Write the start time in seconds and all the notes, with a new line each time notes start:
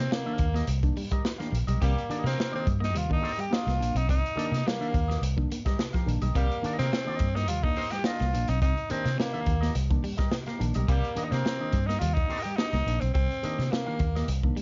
Already playing: C4
0.10 C3 A#3 C4, snare
0.25 D#3 A#3 D4 G4 A#4 F5
0.38 D#2 A#3 D4, muted clean electric guitar stroke, kick, closed hi-hat
0.54 A#3 G4 A#4 D#5, snare, closed hi-hat
0.67 C2 C3, muted clean electric guitar stroke, closed hi-hat
0.83 D#3 A#3 D4, kick, closed hi-hat
0.96 G3 A#3 D4, open hi-hat
1.11 G3 G4 A#4 D#5, kick, closed hi-hat
1.25 snare
1.38 D#3 A#3 D4 G4 A#4 F5, snare, closed hi-hat
1.52 A#1, muted clean electric guitar stroke, closed hi-hat
1.67 B1 C3 G3 G4 A#4 D#5, closed hi-hat
1.82 C2 C3 G3 A#3 C4 G4, kick, closed hi-hat
1.98 closed hi-hat
2.09 D#3 A#3 D4 G4 A#4 D#5, muted fingered electric bass stroke, muted clean electric guitar stroke, closed hi-hat
2.24 C3 A#3 C4 D4 A#4, snare, closed hi-hat
2.38 C3 C4, snare
2.52 D#3 A#3 C4 D4 G4 A#4 D#5
2.66 G2 A#3 D4, muted clean electric guitar stroke, kick, closed hi-hat
2.80 A#3 G4 A#4 D#5, snare, closed hi-hat
2.85 D#4
2.95 D#2 C3 G3 F4, closed hi-hat
3.10 D#3 A#3 D4 D#4, muted clean electric guitar stroke, kick
3.22 A#3 C4 D4 G4 A#4 C5 D#5, open hi-hat
3.38 G3 G4, closed hi-hat
3.50 A#3 D4 F4 G4 A#4 D#5, snare
3.66 C2 C3 A#3, snare, closed hi-hat
3.79 A#1 A#3 D4, muted clean electric guitar stroke, closed hi-hat
3.95 B1 C4 D#4, closed hi-hat
4.08 C2 C3 C4 D#4, kick, closed hi-hat
4.26 closed hi-hat
4.36 D#3 A#3 D4 G4 A#4 D#5, muted fingered electric bass stroke, muted clean electric guitar stroke, closed hi-hat
4.52 C3 A#3 D4, snare, closed hi-hat
4.66 C3 G3 A#3, snare
4.80 D#3 A#3 D4 G4 A#4 F5, closed hi-hat
4.93 D#2 A#3 D4, muted clean electric guitar stroke, kick, closed hi-hat
5.08 A#3 G4 A#4 D#5, snare, closed hi-hat
5.22 C2 C3, muted clean electric guitar stroke, closed hi-hat
5.36 D#3 A#3 D4, kick
5.50 A#3 D4, closed hi-hat
5.65 G3 G4 A#4 D#5, kick, snare, closed hi-hat
5.78 C3, snare
5.93 F3 G4 A#4 F5, kick, snare, closed hi-hat
6.06 A#1 D#3 A#3 D4, muted clean electric guitar stroke, closed hi-hat
6.21 B1 G3 A#3 D4 G4 A#4 D#5, closed hi-hat
6.35 C2 C3 G3 A#3 C4 G4, kick, closed hi-hat
6.51 closed hi-hat
6.62 D#3 A#3 D4 G4 A#4 D#5, muted clean electric guitar stroke, muted fingered electric bass stroke, closed hi-hat
6.78 C3 A#3 C4 D4 A#4, snare, closed hi-hat
6.91 C3 C4, snare
7.06 D#3 A#3 D4 G4 A#4 D#5
7.19 G2 A#3 D4, muted clean electric guitar stroke, kick, closed hi-hat
7.35 A#3 D#4 G4 A#4 D#5, snare, closed hi-hat
7.48 D#2 C3 G3 F4, closed hi-hat
7.63 D#3 A#3 D4 D#4, muted clean electric guitar stroke, kick
7.76 A#3 C4 D4 G4 A#4 C5 D#5, open hi-hat
7.91 G3 G4, snare, closed hi-hat
8.04 A#3 D4 F4 G4 A#4 D#5, snare
8.19 C2 C3 A#3, snare, closed hi-hat
8.33 A#1 A#3 D4, muted clean electric guitar stroke, closed hi-hat
8.48 B1 C4 D#4, closed hi-hat
8.62 C2 C3 C4 D#4, kick, closed hi-hat
8.77 closed hi-hat
8.90 D#3 A#3 C4 D4 G4 A#4 D#5, muted clean electric guitar stroke, muted fingered electric bass stroke, closed hi-hat
9.05 C3 A#3 D4, snare, closed hi-hat
9.18 C3 A#3 C4, snare
9.33 D#3 A#3 D4 G4 A#4 F5, closed hi-hat
9.46 D#2 A#3 D4, muted clean electric guitar stroke, kick, closed hi-hat
9.61 A#3 G4 A#4 D#5, snare, closed hi-hat
9.75 C2 C3, muted clean electric guitar stroke, closed hi-hat
9.90 D#3 A#3 D4, kick, closed hi-hat
10.03 G3 A#3 D4, open hi-hat
10.17 G3 G4 A#4 D#5, kick, snare, closed hi-hat
10.31 C3, snare
10.46 A#3 G4 A#4 F5, snare, closed hi-hat
10.59 A#1 D#3 A#3 D4, muted clean electric guitar stroke, closed hi-hat
10.74 B1 G3 A#3 D4 G4 A#4 D#5, closed hi-hat
10.88 C2 C3 G3 A#3 C4 G4, kick, closed hi-hat
11.04 closed hi-hat
11.16 D#3 A#3 D4 G4 A#4 D#5, muted fingered electric bass stroke, muted clean electric guitar stroke, closed hi-hat
11.24 D#4
11.31 C3 A#3 C4 D4 A#4, snare, closed hi-hat
11.45 C3 C4, snare
11.60 D#3 A#3 D4 G4 A#4 D#5
11.72 G2 A#3 D4, muted clean electric guitar stroke, kick, closed hi-hat
11.87 A#3 D#4 G4 A#4 D#5, snare, closed hi-hat
11.99 D#2 C3 G3 F4, closed hi-hat
12.14 D#3 A#3 D4 D#4, muted clean electric guitar stroke, kick, closed hi-hat
12.29 A#3 C4 D4 G4 A#4 C5 D#5, open hi-hat
12.43 G3 G4, closed hi-hat
12.57 A#3 D4 D#4 G4 A#4 D#5, snare
12.73 C2 C3 A#3, snare, closed hi-hat
12.87 A#1 A#3 D4, muted clean electric guitar stroke, closed hi-hat
13.00 B1 C4, closed hi-hat
13.14 C2 C3 C4, kick, closed hi-hat
13.31 closed hi-hat
13.43 D#3 A#3 D4 G4 A#4 D#5, muted fingered electric bass stroke, muted clean electric guitar stroke, closed hi-hat
13.59 C3 A#3 D4, snare, closed hi-hat
13.71 C3 A#3 C4, snare
13.86 D#3 A#3 D4 G4 A#4 F5
13.99 D#2 A#3 D4, muted clean electric guitar stroke, kick, closed hi-hat
14.15 A#3 G4 A#4 D#5, snare, closed hi-hat
14.28 C2 C3, muted clean electric guitar stroke, closed hi-hat
14.43 D#3 A#3 D4, kick
14.56 G3 A#3 D4, closed hi-hat